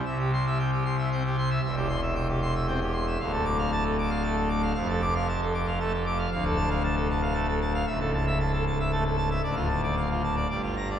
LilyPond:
<<
  \new Staff \with { instrumentName = "Pipe organ" } { \time 3/4 \key c \major \tempo 4 = 115 e''16 g'16 c'''16 e''16 g''16 g'16 c'''16 e''16 g''16 g'16 c'''16 e''16 | e''16 g'16 c'''16 e''16 g''16 g'16 c'''16 e''16 g''16 g'16 c'''16 e''16 | f''16 a'16 d'''16 f''16 a''16 a'16 d'''16 f''16 a''16 a'16 d'''16 f''16 | f''16 a'16 d'''16 f''16 a''16 a'16 d'''16 f''16 a''16 a'16 d'''16 f''16 |
\key a \phrygian f''16 a'16 a''16 f''16 a''16 a'16 a''16 f''16 a''16 a'16 a''16 f''16 | e''16 a'16 a''16 e''16 a''16 a'16 a''16 e''16 a''16 a'16 a''16 e''16 | d''16 f'16 a''16 d''16 f''16 f'16 a''16 d''16 d''16 f'16 bes''16 d''16 | }
  \new Staff \with { instrumentName = "Pipe organ" } { \clef bass \time 3/4 \key c \major << { c2 c'16 r8. | e,2 c'16 r8. | d,2 a16 r8. | f,2 a16 r8. |
\key a \phrygian d,2 a16 r8. | cis,2 a16 r8. | d,2 g,4 | } \\ { c,2. | e,,2. | d,,2. | f,,2. |
d,,2. | cis,,2. | d,,2 g,,4 | } >> }
>>